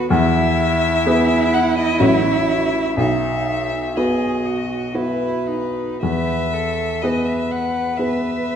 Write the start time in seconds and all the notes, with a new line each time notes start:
Already playing: B3 F#4 A4 B4
0.10 E2 E4 E5
1.06 B3 G#4 B4
1.53 F#5
1.77 D#5
1.99 A1 F#3 F#4 C#5 E5
2.97 B1 D#4 E5
3.96 B3 F#4 G#4 B4 D#5
4.45 F#4
4.94 B3 E4 F#4 B4
5.47 D#4
6.01 E2 B4 E5
6.54 A4
7.02 B3 G#4 B4 D#5
7.25 E5
7.51 F#5
7.97 B3 G#4 B4 E5